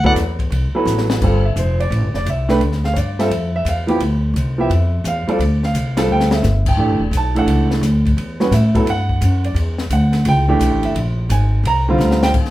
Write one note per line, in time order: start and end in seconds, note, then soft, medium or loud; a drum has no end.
0.00 0.14 D2 medium
0.04 0.15 F#3 medium
0.04 0.15 B3 medium
0.04 0.15 E4 medium
0.04 0.16 A4 medium
0.04 0.16 D5 medium
0.04 0.13 F#5 loud
0.04 kick medium
0.15 0.49 E2 medium
0.15 snare soft
0.15 hi-hat pedal medium
0.15 ride medium
0.39 kick medium
0.39 ride soft
0.50 0.72 C2 medium
0.50 ride medium
0.73 1.19 F#3 medium
0.73 1.19 B3 medium
0.73 1.19 E4 medium
0.73 1.20 A4 medium
0.73 1.20 B4 medium
0.73 muted upright bass stroke soft
0.85 1.20 A1 loud
0.85 snare soft
0.85 hi-hat pedal medium
0.98 snare medium
1.10 snare medium
1.21 1.55 G1 medium
1.21 1.42 G3 medium
1.21 1.43 C4 medium
1.21 1.43 F4 medium
1.21 1.43 A4 medium
1.21 kick medium
1.21 crash medium
1.45 1.56 E5 medium
1.56 1.90 F1 medium
1.56 1.80 C5 medium
1.56 hi-hat pedal medium
1.56 ride medium
1.80 2.12 D5 medium
1.80 ride soft
1.90 2.02 A1 medium
1.90 ride medium
2.02 2.13 G1 medium
2.14 2.25 F1 medium
2.14 2.26 D5 medium
2.14 snare soft
2.26 2.60 C2 medium
2.26 2.50 E5 medium
2.26 hi-hat pedal soft
2.26 ride medium
2.48 2.59 A3 medium
2.48 2.59 D4 medium
2.48 2.60 G4 medium
2.48 2.60 B4 medium
2.48 snare medium
2.60 2.94 D2 medium
2.60 ride medium
2.72 snare soft
2.84 2.96 F5 medium
2.84 snare soft
2.94 3.29 G2 medium
2.94 2.96 C#5 soft
2.94 hi-hat pedal medium
2.94 ride medium
2.98 3.19 D5 medium
3.19 3.29 G3 medium
3.19 3.30 C4 medium
3.19 3.30 F4 medium
3.19 3.30 A4 medium
3.19 3.52 E5 medium
3.19 snare soft
3.19 ride soft
3.30 3.64 F2 medium
3.30 ride medium
3.56 3.66 E5 medium
3.65 3.99 E2 loud
3.65 3.81 F5 medium
3.65 hi-hat pedal medium
3.65 ride medium
3.87 3.98 F3 medium
3.87 3.99 B3 medium
3.87 3.99 E4 medium
3.87 3.99 G4 medium
3.87 ride soft
4.00 4.33 D2 medium
4.00 ride medium
4.34 4.68 C2 medium
4.34 hi-hat pedal medium
4.34 ride medium
4.58 4.69 F3 medium
4.58 4.69 B3 medium
4.58 4.69 E4 medium
4.58 4.69 G4 medium
4.58 5.03 E5 medium
4.70 5.03 F2 medium
4.70 ride medium
5.04 5.26 E2 loud
5.04 5.28 F5 medium
5.04 hi-hat pedal medium
5.04 ride medium
5.27 5.38 G3 medium
5.27 5.38 C4 medium
5.27 5.39 F4 medium
5.27 5.39 A4 medium
5.27 5.61 D5 medium
5.27 muted upright bass stroke soft
5.27 ride soft
5.39 5.73 D2 medium
5.39 ride medium
5.63 6.07 F5 medium
5.63 snare soft
5.74 6.08 C2 medium
5.74 hi-hat pedal soft
5.74 ride medium
5.97 6.41 G3 medium
5.97 6.41 C4 medium
5.97 6.42 F4 medium
5.97 6.42 A4 medium
5.97 snare medium
5.97 ride medium
6.08 6.42 D2 medium
6.08 6.33 G5 medium
6.20 snare medium
6.31 6.66 E5 medium
6.31 snare medium
6.42 6.76 G1 loud
6.42 snare soft
6.42 hi-hat pedal medium
6.66 7.11 G5 medium
6.66 kick medium
6.66 crash medium
6.77 6.89 A1 medium
6.77 6.99 E3 medium
6.77 6.99 A3 medium
6.77 6.99 D4 medium
6.77 6.99 G4 medium
6.89 6.99 G1 medium
6.99 7.11 E1 medium
7.11 7.46 B1 medium
7.11 hi-hat pedal medium
7.11 ride medium
7.17 7.37 A5 medium
7.35 7.80 E3 medium
7.35 7.80 A3 medium
7.35 7.80 D4 medium
7.35 7.81 A4 medium
7.35 7.70 F#5 medium
7.35 ride medium
7.46 7.81 C#2 medium
7.46 ride medium
7.71 snare medium
7.81 8.15 D2 loud
7.81 snare soft
7.81 hi-hat pedal soft
7.81 ride medium
8.06 kick medium
8.06 ride soft
8.17 8.51 E2 medium
8.17 ride medium
8.40 8.51 G3 medium
8.40 8.51 C#4 medium
8.40 8.51 F#4 medium
8.40 8.51 B4 medium
8.40 snare soft
8.51 8.85 A2 medium
8.51 8.85 E5 medium
8.51 snare soft
8.51 hi-hat pedal medium
8.51 ride medium
8.75 8.85 F#3 medium
8.75 8.86 B3 medium
8.75 8.86 E4 medium
8.75 8.86 A4 medium
8.75 kick medium
8.75 ride medium
8.86 9.20 G2 medium
8.86 ride medium
8.90 9.42 F#5 medium
9.09 kick soft
9.21 9.54 F#2 loud
9.21 hi-hat pedal medium
9.21 ride medium
9.44 9.56 D5 medium
9.44 ride soft
9.54 9.89 E2 medium
9.54 ride medium
9.78 snare medium
9.90 10.24 D2 medium
9.90 10.24 F#5 medium
9.90 hi-hat pedal medium
9.90 ride medium
10.13 snare soft
10.13 ride soft
10.25 10.59 C#2 loud
10.25 10.81 G5 loud
10.25 ride medium
10.48 10.93 E3 medium
10.48 10.93 A3 medium
10.48 10.93 D4 medium
10.48 10.93 G4 medium
10.59 10.71 B1 loud
10.59 hi-hat pedal medium
10.59 ride medium
10.71 10.82 A1 medium
10.83 10.94 G1 medium
10.83 10.96 E5 medium
10.83 ride medium
10.95 11.29 A#1 medium
10.95 ride medium
11.29 11.63 G#1 medium
11.29 11.63 G#5 medium
11.29 hi-hat pedal medium
11.29 ride medium
11.64 11.98 C2 medium
11.64 12.20 A#5 loud
11.64 ride medium
11.89 12.32 D3 medium
11.89 12.33 G3 medium
11.89 12.33 C4 medium
11.89 12.33 F4 medium
11.98 12.33 D2 loud
11.98 snare medium
11.98 hi-hat pedal medium
12.11 snare medium
12.23 12.30 G5 loud
12.23 snare loud
12.34 12.50 D#2 medium
12.34 kick medium
12.34 crash medium
12.45 snare soft